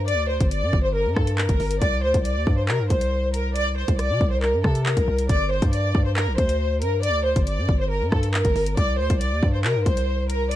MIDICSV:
0, 0, Header, 1, 4, 480
1, 0, Start_track
1, 0, Key_signature, -2, "minor"
1, 0, Tempo, 434783
1, 86, Time_signature, 4, 2, 24, 8
1, 11655, End_track
2, 0, Start_track
2, 0, Title_t, "Violin section"
2, 0, Program_c, 0, 48
2, 87, Note_on_c, 0, 74, 106
2, 286, Note_off_c, 0, 74, 0
2, 327, Note_on_c, 0, 72, 78
2, 526, Note_off_c, 0, 72, 0
2, 567, Note_on_c, 0, 74, 85
2, 905, Note_off_c, 0, 74, 0
2, 925, Note_on_c, 0, 72, 83
2, 1025, Note_off_c, 0, 72, 0
2, 1046, Note_on_c, 0, 70, 91
2, 1245, Note_off_c, 0, 70, 0
2, 1287, Note_on_c, 0, 69, 77
2, 1486, Note_off_c, 0, 69, 0
2, 1527, Note_on_c, 0, 70, 87
2, 1978, Note_off_c, 0, 70, 0
2, 2004, Note_on_c, 0, 74, 101
2, 2204, Note_off_c, 0, 74, 0
2, 2247, Note_on_c, 0, 72, 89
2, 2446, Note_off_c, 0, 72, 0
2, 2487, Note_on_c, 0, 74, 81
2, 2825, Note_off_c, 0, 74, 0
2, 2848, Note_on_c, 0, 72, 74
2, 2947, Note_off_c, 0, 72, 0
2, 2966, Note_on_c, 0, 70, 96
2, 3165, Note_off_c, 0, 70, 0
2, 3206, Note_on_c, 0, 72, 81
2, 3657, Note_off_c, 0, 72, 0
2, 3687, Note_on_c, 0, 70, 93
2, 3886, Note_off_c, 0, 70, 0
2, 3927, Note_on_c, 0, 74, 113
2, 4126, Note_off_c, 0, 74, 0
2, 4168, Note_on_c, 0, 72, 81
2, 4366, Note_off_c, 0, 72, 0
2, 4406, Note_on_c, 0, 74, 93
2, 4744, Note_off_c, 0, 74, 0
2, 4766, Note_on_c, 0, 72, 73
2, 4866, Note_off_c, 0, 72, 0
2, 4886, Note_on_c, 0, 70, 86
2, 5085, Note_off_c, 0, 70, 0
2, 5127, Note_on_c, 0, 69, 82
2, 5326, Note_off_c, 0, 69, 0
2, 5367, Note_on_c, 0, 70, 83
2, 5818, Note_off_c, 0, 70, 0
2, 5847, Note_on_c, 0, 74, 103
2, 6046, Note_off_c, 0, 74, 0
2, 6086, Note_on_c, 0, 72, 84
2, 6285, Note_off_c, 0, 72, 0
2, 6325, Note_on_c, 0, 74, 83
2, 6664, Note_off_c, 0, 74, 0
2, 6686, Note_on_c, 0, 72, 76
2, 6786, Note_off_c, 0, 72, 0
2, 6806, Note_on_c, 0, 70, 99
2, 7005, Note_off_c, 0, 70, 0
2, 7048, Note_on_c, 0, 72, 85
2, 7498, Note_off_c, 0, 72, 0
2, 7526, Note_on_c, 0, 70, 88
2, 7725, Note_off_c, 0, 70, 0
2, 7767, Note_on_c, 0, 74, 110
2, 7966, Note_off_c, 0, 74, 0
2, 8007, Note_on_c, 0, 72, 80
2, 8206, Note_off_c, 0, 72, 0
2, 8247, Note_on_c, 0, 74, 86
2, 8585, Note_off_c, 0, 74, 0
2, 8608, Note_on_c, 0, 72, 85
2, 8707, Note_off_c, 0, 72, 0
2, 8727, Note_on_c, 0, 70, 91
2, 8926, Note_off_c, 0, 70, 0
2, 8967, Note_on_c, 0, 69, 78
2, 9166, Note_off_c, 0, 69, 0
2, 9208, Note_on_c, 0, 70, 84
2, 9658, Note_off_c, 0, 70, 0
2, 9687, Note_on_c, 0, 74, 100
2, 9886, Note_off_c, 0, 74, 0
2, 9929, Note_on_c, 0, 72, 92
2, 10127, Note_off_c, 0, 72, 0
2, 10168, Note_on_c, 0, 74, 79
2, 10506, Note_off_c, 0, 74, 0
2, 10529, Note_on_c, 0, 72, 71
2, 10628, Note_off_c, 0, 72, 0
2, 10647, Note_on_c, 0, 70, 97
2, 10846, Note_off_c, 0, 70, 0
2, 10886, Note_on_c, 0, 72, 83
2, 11337, Note_off_c, 0, 72, 0
2, 11366, Note_on_c, 0, 70, 96
2, 11565, Note_off_c, 0, 70, 0
2, 11605, Note_on_c, 0, 74, 111
2, 11655, Note_off_c, 0, 74, 0
2, 11655, End_track
3, 0, Start_track
3, 0, Title_t, "808-style bass"
3, 0, Program_c, 1, 38
3, 0, Note_on_c, 1, 43, 103
3, 148, Note_on_c, 1, 38, 104
3, 164, Note_off_c, 1, 43, 0
3, 432, Note_off_c, 1, 38, 0
3, 448, Note_on_c, 1, 31, 107
3, 687, Note_on_c, 1, 43, 99
3, 704, Note_off_c, 1, 31, 0
3, 801, Note_off_c, 1, 43, 0
3, 807, Note_on_c, 1, 31, 112
3, 1167, Note_on_c, 1, 43, 97
3, 1183, Note_off_c, 1, 31, 0
3, 1280, Note_off_c, 1, 43, 0
3, 1286, Note_on_c, 1, 43, 106
3, 1631, Note_off_c, 1, 43, 0
3, 1646, Note_on_c, 1, 31, 104
3, 1761, Note_off_c, 1, 31, 0
3, 1767, Note_on_c, 1, 31, 101
3, 1997, Note_off_c, 1, 31, 0
3, 2005, Note_on_c, 1, 36, 113
3, 2246, Note_on_c, 1, 38, 96
3, 2263, Note_off_c, 1, 36, 0
3, 2360, Note_off_c, 1, 38, 0
3, 2366, Note_on_c, 1, 36, 112
3, 2605, Note_on_c, 1, 39, 97
3, 2622, Note_off_c, 1, 36, 0
3, 2720, Note_off_c, 1, 39, 0
3, 2726, Note_on_c, 1, 43, 108
3, 2966, Note_on_c, 1, 48, 103
3, 2982, Note_off_c, 1, 43, 0
3, 3085, Note_on_c, 1, 43, 99
3, 3101, Note_off_c, 1, 48, 0
3, 3199, Note_off_c, 1, 43, 0
3, 3206, Note_on_c, 1, 36, 107
3, 4243, Note_off_c, 1, 36, 0
3, 4286, Note_on_c, 1, 36, 106
3, 4525, Note_on_c, 1, 48, 97
3, 4542, Note_off_c, 1, 36, 0
3, 4640, Note_off_c, 1, 48, 0
3, 4645, Note_on_c, 1, 36, 108
3, 5005, Note_on_c, 1, 43, 99
3, 5021, Note_off_c, 1, 36, 0
3, 5119, Note_off_c, 1, 43, 0
3, 5126, Note_on_c, 1, 48, 107
3, 5472, Note_off_c, 1, 48, 0
3, 5487, Note_on_c, 1, 36, 102
3, 5601, Note_off_c, 1, 36, 0
3, 5606, Note_on_c, 1, 36, 109
3, 5837, Note_off_c, 1, 36, 0
3, 5845, Note_on_c, 1, 31, 114
3, 6191, Note_off_c, 1, 31, 0
3, 6207, Note_on_c, 1, 43, 106
3, 6552, Note_off_c, 1, 43, 0
3, 6566, Note_on_c, 1, 43, 107
3, 6925, Note_on_c, 1, 34, 95
3, 6942, Note_off_c, 1, 43, 0
3, 7040, Note_off_c, 1, 34, 0
3, 7046, Note_on_c, 1, 38, 108
3, 7525, Note_on_c, 1, 43, 100
3, 7541, Note_off_c, 1, 38, 0
3, 7825, Note_on_c, 1, 38, 105
3, 7841, Note_off_c, 1, 43, 0
3, 8110, Note_off_c, 1, 38, 0
3, 8127, Note_on_c, 1, 31, 111
3, 8366, Note_on_c, 1, 43, 96
3, 8383, Note_off_c, 1, 31, 0
3, 8480, Note_off_c, 1, 43, 0
3, 8487, Note_on_c, 1, 31, 109
3, 8845, Note_on_c, 1, 43, 99
3, 8862, Note_off_c, 1, 31, 0
3, 8960, Note_off_c, 1, 43, 0
3, 8967, Note_on_c, 1, 43, 110
3, 9312, Note_off_c, 1, 43, 0
3, 9326, Note_on_c, 1, 31, 101
3, 9441, Note_off_c, 1, 31, 0
3, 9446, Note_on_c, 1, 31, 104
3, 9676, Note_off_c, 1, 31, 0
3, 9686, Note_on_c, 1, 36, 113
3, 9925, Note_on_c, 1, 38, 97
3, 9942, Note_off_c, 1, 36, 0
3, 10040, Note_off_c, 1, 38, 0
3, 10047, Note_on_c, 1, 36, 112
3, 10287, Note_on_c, 1, 39, 97
3, 10303, Note_off_c, 1, 36, 0
3, 10400, Note_off_c, 1, 39, 0
3, 10408, Note_on_c, 1, 43, 112
3, 10646, Note_on_c, 1, 48, 100
3, 10663, Note_off_c, 1, 43, 0
3, 10767, Note_on_c, 1, 43, 101
3, 10783, Note_off_c, 1, 48, 0
3, 10880, Note_off_c, 1, 43, 0
3, 10887, Note_on_c, 1, 36, 105
3, 11655, Note_off_c, 1, 36, 0
3, 11655, End_track
4, 0, Start_track
4, 0, Title_t, "Drums"
4, 88, Note_on_c, 9, 42, 92
4, 198, Note_off_c, 9, 42, 0
4, 447, Note_on_c, 9, 42, 81
4, 448, Note_on_c, 9, 36, 111
4, 558, Note_off_c, 9, 36, 0
4, 558, Note_off_c, 9, 42, 0
4, 567, Note_on_c, 9, 42, 90
4, 677, Note_off_c, 9, 42, 0
4, 807, Note_on_c, 9, 36, 104
4, 917, Note_off_c, 9, 36, 0
4, 1286, Note_on_c, 9, 36, 108
4, 1286, Note_on_c, 9, 37, 112
4, 1396, Note_off_c, 9, 37, 0
4, 1397, Note_off_c, 9, 36, 0
4, 1405, Note_on_c, 9, 42, 90
4, 1516, Note_off_c, 9, 42, 0
4, 1525, Note_on_c, 9, 39, 124
4, 1635, Note_off_c, 9, 39, 0
4, 1645, Note_on_c, 9, 42, 71
4, 1646, Note_on_c, 9, 36, 100
4, 1755, Note_off_c, 9, 42, 0
4, 1757, Note_off_c, 9, 36, 0
4, 1765, Note_on_c, 9, 46, 58
4, 1875, Note_off_c, 9, 46, 0
4, 1885, Note_on_c, 9, 42, 88
4, 1995, Note_off_c, 9, 42, 0
4, 2004, Note_on_c, 9, 42, 90
4, 2005, Note_on_c, 9, 36, 117
4, 2115, Note_off_c, 9, 42, 0
4, 2116, Note_off_c, 9, 36, 0
4, 2365, Note_on_c, 9, 42, 81
4, 2366, Note_on_c, 9, 36, 107
4, 2476, Note_off_c, 9, 42, 0
4, 2477, Note_off_c, 9, 36, 0
4, 2485, Note_on_c, 9, 42, 89
4, 2596, Note_off_c, 9, 42, 0
4, 2726, Note_on_c, 9, 36, 107
4, 2836, Note_off_c, 9, 36, 0
4, 2964, Note_on_c, 9, 39, 120
4, 3074, Note_off_c, 9, 39, 0
4, 3205, Note_on_c, 9, 42, 82
4, 3206, Note_on_c, 9, 36, 111
4, 3315, Note_off_c, 9, 42, 0
4, 3316, Note_off_c, 9, 36, 0
4, 3325, Note_on_c, 9, 42, 93
4, 3436, Note_off_c, 9, 42, 0
4, 3685, Note_on_c, 9, 42, 81
4, 3796, Note_off_c, 9, 42, 0
4, 3926, Note_on_c, 9, 42, 90
4, 4036, Note_off_c, 9, 42, 0
4, 4285, Note_on_c, 9, 42, 79
4, 4286, Note_on_c, 9, 36, 110
4, 4396, Note_off_c, 9, 42, 0
4, 4397, Note_off_c, 9, 36, 0
4, 4405, Note_on_c, 9, 37, 71
4, 4406, Note_on_c, 9, 42, 90
4, 4516, Note_off_c, 9, 37, 0
4, 4516, Note_off_c, 9, 42, 0
4, 4646, Note_on_c, 9, 36, 109
4, 4756, Note_off_c, 9, 36, 0
4, 4885, Note_on_c, 9, 39, 69
4, 4995, Note_off_c, 9, 39, 0
4, 5125, Note_on_c, 9, 37, 112
4, 5126, Note_on_c, 9, 36, 111
4, 5235, Note_off_c, 9, 37, 0
4, 5236, Note_off_c, 9, 36, 0
4, 5246, Note_on_c, 9, 42, 91
4, 5356, Note_off_c, 9, 42, 0
4, 5365, Note_on_c, 9, 39, 123
4, 5475, Note_off_c, 9, 39, 0
4, 5485, Note_on_c, 9, 42, 69
4, 5486, Note_on_c, 9, 36, 98
4, 5596, Note_off_c, 9, 42, 0
4, 5597, Note_off_c, 9, 36, 0
4, 5725, Note_on_c, 9, 42, 89
4, 5835, Note_off_c, 9, 42, 0
4, 5845, Note_on_c, 9, 36, 115
4, 5845, Note_on_c, 9, 42, 92
4, 5955, Note_off_c, 9, 42, 0
4, 5956, Note_off_c, 9, 36, 0
4, 6206, Note_on_c, 9, 42, 85
4, 6207, Note_on_c, 9, 36, 108
4, 6317, Note_off_c, 9, 36, 0
4, 6317, Note_off_c, 9, 42, 0
4, 6326, Note_on_c, 9, 42, 94
4, 6436, Note_off_c, 9, 42, 0
4, 6566, Note_on_c, 9, 36, 106
4, 6677, Note_off_c, 9, 36, 0
4, 6806, Note_on_c, 9, 39, 121
4, 6916, Note_off_c, 9, 39, 0
4, 7046, Note_on_c, 9, 36, 110
4, 7046, Note_on_c, 9, 42, 79
4, 7156, Note_off_c, 9, 36, 0
4, 7156, Note_off_c, 9, 42, 0
4, 7165, Note_on_c, 9, 42, 94
4, 7276, Note_off_c, 9, 42, 0
4, 7526, Note_on_c, 9, 42, 83
4, 7636, Note_off_c, 9, 42, 0
4, 7765, Note_on_c, 9, 42, 91
4, 7875, Note_off_c, 9, 42, 0
4, 8126, Note_on_c, 9, 42, 84
4, 8127, Note_on_c, 9, 36, 109
4, 8236, Note_off_c, 9, 42, 0
4, 8237, Note_off_c, 9, 36, 0
4, 8246, Note_on_c, 9, 42, 90
4, 8356, Note_off_c, 9, 42, 0
4, 8486, Note_on_c, 9, 36, 109
4, 8597, Note_off_c, 9, 36, 0
4, 8966, Note_on_c, 9, 37, 114
4, 8967, Note_on_c, 9, 36, 110
4, 9076, Note_off_c, 9, 37, 0
4, 9077, Note_off_c, 9, 36, 0
4, 9086, Note_on_c, 9, 42, 94
4, 9197, Note_off_c, 9, 42, 0
4, 9206, Note_on_c, 9, 39, 125
4, 9317, Note_off_c, 9, 39, 0
4, 9326, Note_on_c, 9, 42, 70
4, 9327, Note_on_c, 9, 36, 94
4, 9437, Note_off_c, 9, 42, 0
4, 9438, Note_off_c, 9, 36, 0
4, 9446, Note_on_c, 9, 46, 58
4, 9557, Note_off_c, 9, 46, 0
4, 9566, Note_on_c, 9, 42, 89
4, 9676, Note_off_c, 9, 42, 0
4, 9686, Note_on_c, 9, 36, 114
4, 9686, Note_on_c, 9, 42, 90
4, 9797, Note_off_c, 9, 36, 0
4, 9797, Note_off_c, 9, 42, 0
4, 10046, Note_on_c, 9, 42, 84
4, 10047, Note_on_c, 9, 36, 109
4, 10157, Note_off_c, 9, 42, 0
4, 10158, Note_off_c, 9, 36, 0
4, 10167, Note_on_c, 9, 42, 94
4, 10277, Note_off_c, 9, 42, 0
4, 10407, Note_on_c, 9, 36, 104
4, 10518, Note_off_c, 9, 36, 0
4, 10647, Note_on_c, 9, 39, 120
4, 10757, Note_off_c, 9, 39, 0
4, 10887, Note_on_c, 9, 36, 110
4, 10887, Note_on_c, 9, 42, 80
4, 10997, Note_off_c, 9, 42, 0
4, 10998, Note_off_c, 9, 36, 0
4, 11008, Note_on_c, 9, 42, 92
4, 11118, Note_off_c, 9, 42, 0
4, 11367, Note_on_c, 9, 42, 82
4, 11477, Note_off_c, 9, 42, 0
4, 11607, Note_on_c, 9, 42, 88
4, 11655, Note_off_c, 9, 42, 0
4, 11655, End_track
0, 0, End_of_file